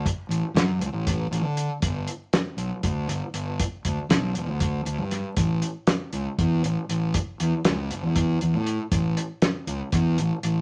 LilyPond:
<<
  \new Staff \with { instrumentName = "Fingered electric bass" } { \clef bass \time 7/8 \key a \mixolydian \tempo 4 = 118 r8 a,,16 r16 fis,8 cis,16 a,,8. a,,16 d8 r16 | g,,8 r4 b,,16 r16 d,8 g,,16 r16 g,,8 | r8 d,16 r16 b,,8 e,,16 d,8. d,16 g,8 r16 | a,,8 r4 cis,16 r16 e,8 a,,16 r16 a,,8 |
r8 e,16 r16 cis,8 fis,,16 e,8. e,16 a,8 r16 | a,,8 r4 cis,16 r16 e,8 a,,16 r16 a,,8 | }
  \new DrumStaff \with { instrumentName = "Drums" } \drummode { \time 7/8 <hh bd>8 hh8 <hh sn>8 hh8 <hh bd>8 hh8 hh8 | <hh bd>8 hh8 <hh sn>8 hh8 <hh bd>8 hh8 hh8 | <hh bd>8 <hh bd>8 <hh sn>8 hh8 <hh bd>8 hh8 <hh sn>8 | <hh bd>8 hh8 <hh sn>8 hh8 <hh bd>8 hh8 hh8 |
<hh bd>8 hh8 <hh sn>8 hh8 <hh bd>8 hh8 hh8 | <hh bd>8 hh8 <hh sn>8 hh8 <hh bd sn>8 hh8 hh8 | }
>>